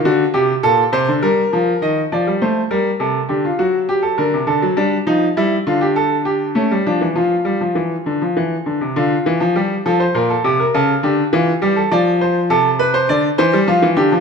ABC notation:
X:1
M:3/4
L:1/16
Q:1/4=101
K:Gm
V:1 name="Grand piano"
^F2 G2 A2 c2 B4 | e2 d2 c2 B2 A2 G F | ^F2 G A B2 A2 D2 E2 | [K:Dm] E2 F G A2 G2 ^C2 D2 |
F8- F2 z2 | F4 G2 A c B A G B | A2 G2 F2 G A d2 c2 | A2 =B c d2 c2 F2 G2 |]
V:2 name="Grand piano" clef=bass
D,2 C,2 B,,2 C, D, G,2 F,2 | E,2 F, G, A,2 G,2 C,2 D,2 | ^F,4 D, C, D, F, G,2 =F,2 | [K:Dm] G,2 D,6 A, G, F, E, |
F,2 G, F, E,2 D, F, E,2 D, C, | D,2 E, F, G,2 F,2 B,,2 C,2 | ^C,2 D,2 E,2 G,2 F,4 | C,4 D,2 E, G, F, E, D, F, |]